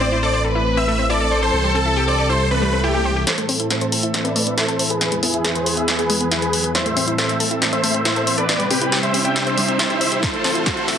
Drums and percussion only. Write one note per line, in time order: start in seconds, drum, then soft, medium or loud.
3.27 snare soft
3.27 closed hi-hat medium
3.38 closed hi-hat medium
3.49 open hi-hat loud
3.60 closed hi-hat medium
3.70 snare medium
3.70 closed hi-hat medium
3.81 closed hi-hat medium
3.92 open hi-hat loud
4.03 closed hi-hat medium
4.14 snare soft
4.14 closed hi-hat medium
4.25 closed hi-hat medium
4.36 open hi-hat loud
4.47 closed hi-hat medium
4.58 snare soft
4.58 closed hi-hat loud
4.68 closed hi-hat soft
4.79 open hi-hat loud
4.90 closed hi-hat medium
5.01 snare medium
5.01 closed hi-hat medium
5.12 closed hi-hat medium
5.23 open hi-hat loud
5.34 closed hi-hat medium
5.45 snare medium
5.45 closed hi-hat medium
5.55 closed hi-hat medium
5.66 open hi-hat loud
5.77 closed hi-hat soft
5.88 snare medium
5.88 closed hi-hat medium
5.99 closed hi-hat medium
6.10 open hi-hat loud
6.21 closed hi-hat soft
6.32 snare medium
6.32 closed hi-hat medium
6.42 closed hi-hat soft
6.53 open hi-hat loud
6.64 closed hi-hat medium
6.75 snare medium
6.75 closed hi-hat medium
6.86 closed hi-hat soft
6.97 open hi-hat loud
7.08 closed hi-hat soft
7.18 snare medium
7.18 closed hi-hat medium
7.29 closed hi-hat soft
7.40 open hi-hat loud
7.51 closed hi-hat soft
7.62 snare medium
7.62 closed hi-hat medium
7.73 closed hi-hat medium
7.84 open hi-hat loud
7.94 closed hi-hat soft
8.05 snare medium
8.05 closed hi-hat medium
8.16 closed hi-hat medium
8.27 open hi-hat loud
8.38 closed hi-hat medium
8.49 snare medium
8.49 closed hi-hat medium
8.60 closed hi-hat medium
8.71 open hi-hat loud
8.81 closed hi-hat medium
8.92 snare medium
8.92 closed hi-hat medium
9.03 closed hi-hat medium
9.14 open hi-hat loud
9.25 closed hi-hat soft
9.36 snare medium
9.36 closed hi-hat medium
9.47 closed hi-hat medium
9.58 open hi-hat loud
9.68 closed hi-hat medium
9.79 snare medium
9.79 closed hi-hat medium
9.90 closed hi-hat soft
10.01 open hi-hat loud
10.12 closed hi-hat medium
10.23 kick loud
10.23 snare medium
10.23 closed hi-hat medium
10.34 closed hi-hat soft
10.44 snare medium
10.44 open hi-hat loud
10.55 closed hi-hat medium
10.66 kick loud
10.66 snare medium
10.66 closed hi-hat medium
10.77 closed hi-hat medium
10.88 snare medium
10.88 open hi-hat loud